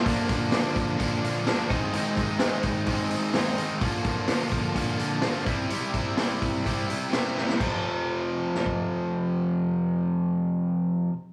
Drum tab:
CC |----------------|----------------|----------------|----------------|
HH |o-o-o-o-o-o-o-o-|o-o-o-o-o-o-o-o-|o-o-o-o-o-o-o-o-|o-o-o-o-o-o-o---|
SD |----o-------oo--|----o-------oo--|----o-------oo--|----o-------oooo|
BD |o-o---o-o-----o-|--o---o-o-------|o-o---o-o-----o-|--o---o-o-------|

CC |x---------------|----------------|
HH |----------------|----------------|
SD |--------o-------|----------------|
BD |o--------o------|----------------|